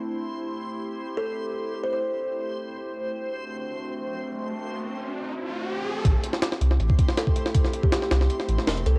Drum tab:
HH |----------------|----------------|----------------|----------------|
SD |----------------|----------------|----------------|----------------|
BD |----------------|----------------|----------------|----------------|

HH |x-x-x-x-x-x-x-x-|x-x-x-x-x-x-oxx-|
SD |---ooo-o---oo--o|-o--oooo-o-oo---|
BD |o--------oo--o--|o--o------------|